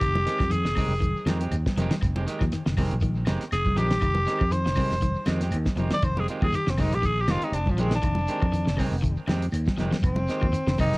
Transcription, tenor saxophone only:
Already playing: G4
0.52 G#4
3.53 G#4
3.78 G4
4.53 C5
5.94 D5
6.05 C5
6.20 G#4
6.29 F4
6.44 G#4
6.56 G4
6.70 C4
6.81 D#4
6.95 G4
7.06 G#4
7.22 G4
7.31 F4
7.44 D#4
7.55 D4
7.71 F3
7.81 G#3
7.96 D4
10.05 C4
10.80 D#4

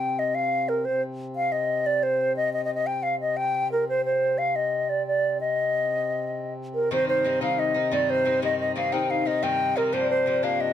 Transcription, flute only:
Already playing: G5
0.19 D#5
0.35 F5
0.69 A#4
0.85 C5
1.36 F5
1.52 D#5
1.86 D5
2.03 C5
2.36 D#5
2.53 D#5
2.65 D#5
2.74 D#5
2.87 G5
3.03 F5
3.20 D#5
3.37 G5
3.72 A#4
3.89 C5
4.05 C5
4.38 F5
4.56 D#5
4.89 D5
5.07 D5
5.40 D#5
6.74 A#4
6.92 C5
7.09 C5
7.42 F5
7.59 D#5
7.93 D5
8.10 C5
8.44 D#5
8.60 D#5
8.76 F5
8.93 G5
9.10 F5
9.27 D#5
9.43 G5
9.77 A#4
9.93 C5
10.10 C5
10.44 F5
10.61 D#5

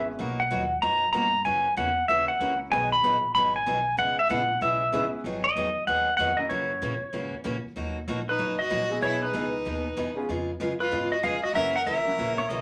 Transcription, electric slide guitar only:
0.40 F#5
0.82 A#5
1.13 A#5
1.45 G#5
1.77 F#5
2.08 E5
2.28 F#5
2.72 G#5
2.92 B5
3.35 B5
3.56 G#5
3.99 F#5
4.19 E5
4.31 F#5
4.62 E5
5.44 D#5
5.87 F#5
6.17 F#5
6.37 D#5
6.49 C#5
8.29 B4
8.59 D#5
9.03 C#5
9.22 B4
10.80 B4
11.12 D#5
11.24 F5
11.44 D#5
11.55 E5
11.76 F#5
11.87 E5

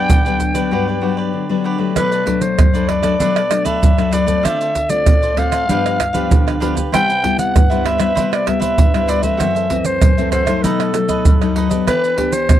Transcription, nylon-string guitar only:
Already playing: F#3 B3 D4
0.09 D3
0.25 F#3 B3 D4
0.54 F#3 B3 D4
0.71 G2
1.01 F#3 B3 D4
1.33 D3
1.49 F#3 B3 D4
1.78 F#3 A3 D4
1.95 B2
2.26 F#3 A3 D4
2.58 F#2
2.74 F#3 A3 D4
3.02 F#3 A3 D4
3.19 B2 F#3 A3 D4
3.49 F#3 A3 D4
3.81 F#2
3.98 F#3 A3 D4
4.27 A3 C4 F4
4.44 D3
4.89 A3 C4 F4
5.07 A2
5.37 A3 C4 F4
5.69 G2 F3 B3 D4
6.14 F3 B3 D4
6.30 D3
6.61 F3 B3 D4
6.92 C3 G3 B3 E4
7.23 G3 B3 E4
7.55 G2
7.70 G3 B3 E4
7.99 G3 B3 E4
8.17 C3 G3 B3 E4
8.47 G3 B3 E4
8.78 G2
8.94 G3 B3 E4
9.23 E3 A3 C4
9.40 F#2
9.70 E3 A3 C4
10.01 F#2
10.18 E3 A3 C4
10.47 F#3 A3 D#4
10.63 B2
10.94 F#3 A3 D#4
11.26 F#2
11.42 F#3 A3 D#4
11.70 B3 D4 G4
11.88 E3
12.17 B3 D4 G4
12.50 B2

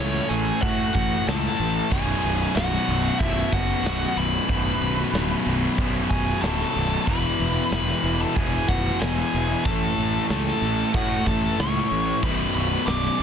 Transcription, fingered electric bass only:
0.00 C#2
0.30 A1
0.63 A2
0.95 A1
1.28 C#2
1.60 A1
1.91 B0
2.24 B0
2.55 B0
2.88 B0
3.20 B0
3.52 F#1
3.83 B0
4.17 B0
4.49 B0
4.81 B0
5.13 D1
5.46 B0
5.78 B1
6.10 B0
6.43 D1
6.76 B0
7.07 E1
7.40 E1
7.72 E1
8.03 E1
8.37 E1
8.68 B0
9.02 E1
9.34 E1
9.65 A1
9.98 A1
10.30 C#2
10.62 A1
10.94 A2
11.26 A1
11.59 C#2
11.92 A1
12.23 B0
12.55 B0
12.87 B0
13.20 B0

